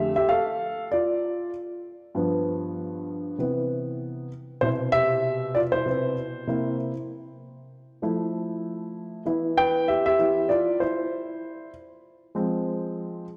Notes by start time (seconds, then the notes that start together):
Already playing: F2 D3 A3 G4 E5
0.16 G4 E5
0.29 A4 F5
0.92 F4 D5
2.15 G2 F3 B3
3.38 C3 E3 B3
4.61 B2 C3 E4 C5
4.92 G4 E5
5.55 F4 D5
5.72 E4 C5
5.86 C3 E4 B4
6.47 C3 A#3 E4
8.02 F3 A3 E4
9.25 E3 B3 E4
9.57 B4 G5
9.88 G4 E5
10.06 G4 E5
10.19 E3 B3 E4
10.49 F4 D5
10.80 E4 C5
12.35 F3 G#3 C4